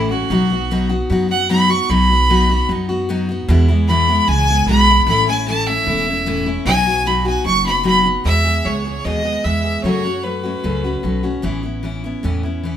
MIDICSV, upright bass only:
0, 0, Header, 1, 2, 480
1, 0, Start_track
1, 0, Key_signature, 4, "major"
1, 0, Tempo, 397878
1, 364, Time_signature, 4, 2, 24, 8
1, 15402, End_track
2, 0, Start_track
2, 0, Title_t, "Upright bass"
2, 0, Program_c, 0, 32
2, 0, Note_on_c, 0, 33, 74
2, 291, Note_off_c, 0, 33, 0
2, 364, Note_on_c, 0, 35, 90
2, 1205, Note_off_c, 0, 35, 0
2, 1326, Note_on_c, 0, 42, 79
2, 2166, Note_off_c, 0, 42, 0
2, 2286, Note_on_c, 0, 35, 85
2, 3125, Note_off_c, 0, 35, 0
2, 3245, Note_on_c, 0, 42, 86
2, 4084, Note_off_c, 0, 42, 0
2, 4204, Note_on_c, 0, 40, 96
2, 5042, Note_off_c, 0, 40, 0
2, 5165, Note_on_c, 0, 37, 83
2, 5570, Note_off_c, 0, 37, 0
2, 5628, Note_on_c, 0, 35, 77
2, 6040, Note_off_c, 0, 35, 0
2, 6112, Note_on_c, 0, 33, 87
2, 6954, Note_off_c, 0, 33, 0
2, 7076, Note_on_c, 0, 28, 84
2, 7916, Note_off_c, 0, 28, 0
2, 8029, Note_on_c, 0, 35, 91
2, 8872, Note_off_c, 0, 35, 0
2, 8997, Note_on_c, 0, 30, 73
2, 9837, Note_off_c, 0, 30, 0
2, 9952, Note_on_c, 0, 40, 76
2, 10374, Note_off_c, 0, 40, 0
2, 10434, Note_on_c, 0, 37, 62
2, 10843, Note_off_c, 0, 37, 0
2, 10916, Note_on_c, 0, 39, 72
2, 11325, Note_off_c, 0, 39, 0
2, 11398, Note_on_c, 0, 40, 63
2, 11806, Note_off_c, 0, 40, 0
2, 11869, Note_on_c, 0, 42, 80
2, 12716, Note_off_c, 0, 42, 0
2, 12840, Note_on_c, 0, 37, 66
2, 13249, Note_off_c, 0, 37, 0
2, 13314, Note_on_c, 0, 35, 68
2, 13726, Note_off_c, 0, 35, 0
2, 13793, Note_on_c, 0, 33, 78
2, 14641, Note_off_c, 0, 33, 0
2, 14769, Note_on_c, 0, 40, 75
2, 15402, Note_off_c, 0, 40, 0
2, 15402, End_track
0, 0, End_of_file